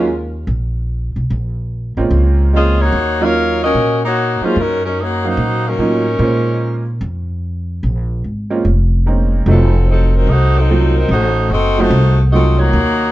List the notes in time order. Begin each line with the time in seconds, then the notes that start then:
Already playing: D#2 G#3 C#4 F4 A#4
0.47 A#1
1.16 B1
1.30 A#1
1.97 A1 G#3 A#3 C4 C#4 F4
2.11 C#2
2.53 G#3 A#3 C4 C#4 F4 G#4 D#5
2.81 A#3 D#4 F#4 C#5
2.92 D#2
3.20 F#3 A#3 C#4 D#4 F4 A#4 C#5 F5
3.63 C#4 F#4 A#4 D#5
3.74 A#2
4.04 A#3 D#4 F#4 C#5
4.41 F#3 G#3 A#3 C#4 D#4 F4 C5, muted upright bass stroke
4.56 F#2 F#3 C#4 D#4 A#4
4.85 F#3 C#4 D#4 A#4
5.00 A#3 D#4 F#4 C#5
5.24 F#3 A#3 C#4 D#4 F#4 C5 F5
5.37 A#2
5.67 F#3 C#4 D#4 A#4
5.78 A2 F#3 A#3 C#4 D#4 F4
6.19 A#2 G#3 A#3 C#4 F4 C5
7.01 F2
7.83 A#1
8.24 G#1
8.50 G#3 A#3 C4 C#4 F4
8.65 F1
9.06 G#3 A#3 C4 C#4 D#4
9.46 F1 F#3 A3 C4 D#4 F4 A4
9.89 F#3 C4 D#4 A4
10.15 F#3 C4 D#4 A#4
10.27 C2 A3 D#4 F#4 C5
10.57 F#3 C4 D#4 A4
10.70 F#3 A3 C4 D#4 F4
10.97 F#3 C4 D#4 A#4
11.09 A1 A3 D#4 F#4 C5
11.50 F#1 C4 F#4 A4 D#5
11.78 F#3 A3 C4 D#4 F4 F#4 C5
11.90 C2
12.32 F#3 A3 C4 D#4 F4 F#4 A4 D#5
12.58 A#3 D#4 F#4 C#5
12.73 D#2